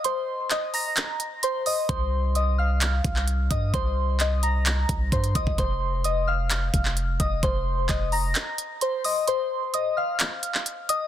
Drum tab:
HH |x---x-o-x-x-x-o-|x---x---x-x-x-x-|x---x-x-x-x-xxx-|x---x---x-x-x-x-|
CP |----x---x-------|--------x--x----|----x---x-------|--------x--x----|
BD |----------------|o---------o---o-|o---------o-o-oo|o---------o---o-|

HH |x---x-o-x-x-x-o-|x---x---x-x-x-x-|
CP |----x---x-------|--------x--x----|
BD |o---o-----------|----------------|